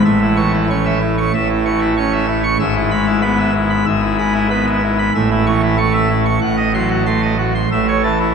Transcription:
0.05 1.32 A1 medium
0.05 1.31 A2 medium
0.05 0.19 E5 medium
0.21 0.36 E4 medium
0.37 0.66 E3 medium
0.37 0.51 C#6 loud
0.54 0.68 E4 medium
0.70 0.98 C#4 medium
0.70 0.84 C#6 medium
0.85 0.99 E5 medium
1.01 1.15 E4 medium
1.18 1.31 C#6 medium
1.33 2.57 A1 medium
1.33 2.56 A2 medium
1.33 1.47 E5 medium
1.50 1.63 E4 medium
1.65 1.93 E3 medium
1.65 1.79 C#6 medium
1.81 1.95 E4 medium
1.97 2.25 C#4 medium
1.97 2.11 C#6 medium
2.13 2.27 E5 medium
2.28 2.42 E4 medium
2.43 2.57 C#6 medium
2.59 3.84 G#1 medium
2.59 3.84 G#2 loud
2.59 2.74 E5 medium
2.75 2.90 E4 medium
2.91 3.20 G#3 medium
2.91 3.05 B5 loud
3.07 3.21 E4 medium
3.22 3.51 B3 medium
3.22 3.37 B5 medium
3.38 3.53 E5 medium
3.55 3.69 E4 medium
3.70 3.85 B5 medium
3.86 5.10 G#1 medium
3.86 5.10 G#2 medium
3.86 4.01 E5 medium
4.02 4.17 E4 medium
4.19 4.47 G#3 medium
4.19 4.33 B5 medium
4.34 4.49 E4 medium
4.50 4.79 B3 medium
4.50 4.65 B5 medium
4.67 4.81 E5 medium
4.83 4.97 E4 medium
4.99 5.12 B5 medium
5.15 6.38 A1 medium
5.15 6.38 A2 medium
5.15 5.29 E5 medium
5.31 5.45 E4 medium
5.46 5.75 E3 medium
5.46 5.60 C#6 loud
5.63 5.76 E4 medium
5.77 6.06 A3 medium
5.77 5.92 C#6 medium
5.94 6.08 E5 medium
6.09 6.24 E4 medium
6.25 6.39 C#6 medium
6.41 7.66 A1 medium
6.41 7.66 A2 medium
6.41 6.56 F#5 medium
6.57 6.72 D#5 medium
6.74 7.02 F#3 medium
6.74 6.88 C6 loud
6.90 7.04 F#4 medium
7.06 7.35 A3 medium
7.06 7.20 C6 medium
7.23 7.37 D#5 medium
7.39 7.53 F#4 medium
7.55 7.68 C6 medium
7.72 8.35 A1 medium
7.72 8.35 A2 medium
7.72 7.86 E5 medium
7.88 8.02 C#5 medium
8.04 8.32 E3 medium
8.04 8.17 A5 medium
8.20 8.34 E4 medium

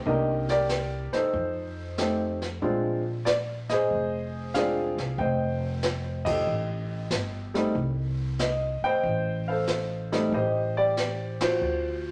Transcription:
0.05 1.10 C2 medium
0.05 0.45 A#3 medium
0.05 0.46 D4 medium
0.05 0.46 D#4 medium
0.05 0.46 G4 medium
0.05 0.50 A#4 medium
0.05 0.47 D#5 medium
0.05 brush sweep medium
0.05 kick soft
0.49 1.31 G4 medium
0.49 1.31 A#4 medium
0.49 1.16 D5 medium
0.49 snare soft
0.69 snare medium
0.69 hi-hat pedal soft
1.13 1.97 D#4 medium
1.13 2.38 A4 medium
1.13 2.38 C5 medium
1.13 muted upright bass stroke soft
1.13 snare soft
1.33 2.58 F2 medium
1.33 brush sweep soft
1.33 kick soft
1.98 2.37 A3 soft
1.98 2.38 C4 soft
1.98 2.38 D#4 soft
1.98 2.38 G4 medium
1.98 snare medium
1.98 hi-hat pedal medium
2.42 snare soft
2.62 3.86 A#1 medium
2.62 3.01 G#3 medium
2.62 3.02 C4 medium
2.62 3.02 D4 soft
2.62 3.02 F4 medium
2.62 brush sweep soft
2.62 kick soft
3.25 3.35 D5 medium
3.25 snare medium
3.25 hi-hat pedal medium
3.69 4.54 G#4 medium
3.69 4.95 C5 medium
3.69 4.30 D#5 medium
3.69 snare soft
3.90 4.94 F1 medium
3.90 brush sweep soft
3.90 kick soft
4.54 4.94 G#3 soft
4.54 4.94 C4 soft
4.54 4.94 D4 soft
4.54 4.94 F4 medium
4.54 5.15 G#4 medium
4.54 5.16 D5 medium
4.54 5.15 F5 medium
4.54 snare medium
4.54 hi-hat pedal medium
4.97 5.17 C2 medium
4.97 snare soft
5.18 6.43 F1 medium
5.18 6.44 C5 medium
5.18 6.23 D#5 medium
5.18 6.30 G5 medium
5.18 brush sweep soft
5.18 kick soft
5.83 snare medium
5.83 hi-hat pedal medium
6.25 7.51 G4 medium
6.25 7.51 A4 medium
6.25 7.50 D#5 medium
6.25 kick medium
6.25 ride medium
6.47 7.07 A1 medium
6.47 brush sweep soft
7.10 7.71 G1 medium
7.10 snare medium
7.10 hi-hat pedal medium
7.54 7.73 G3 medium
7.54 7.73 A3 medium
7.54 7.73 C4 medium
7.54 7.74 D#4 medium
7.54 snare soft
7.75 8.79 C2 medium
7.75 brush sweep soft
7.75 kick soft
8.39 8.81 D#5 medium
8.39 snare medium
8.39 hi-hat pedal soft
8.82 9.47 C5 medium
8.82 10.09 D#5 medium
8.82 9.44 G5 loud
8.82 muted upright bass stroke soft
9.03 10.28 A1 medium
9.03 brush sweep soft
9.03 kick soft
9.48 10.29 A4 medium
9.48 10.29 C5 medium
9.48 10.08 F5 medium
9.67 snare medium
9.67 hi-hat pedal medium
10.12 10.31 G3 medium
10.12 10.31 A3 medium
10.12 10.31 C4 medium
10.12 10.31 D#4 medium
10.12 snare soft
10.32 11.57 A1 medium
10.32 10.77 G4 medium
10.32 11.40 C5 medium
10.32 10.74 D#5 medium
10.32 brush sweep soft
10.32 kick soft
10.77 11.58 G4 medium
10.77 11.43 D5 medium
10.97 snare medium
10.97 hi-hat pedal soft
11.41 12.12 F4 medium
11.41 12.12 F#4 medium
11.41 12.12 C5 medium
11.41 snare medium
11.41 ride medium
11.61 12.12 D2 medium
11.61 brush sweep soft

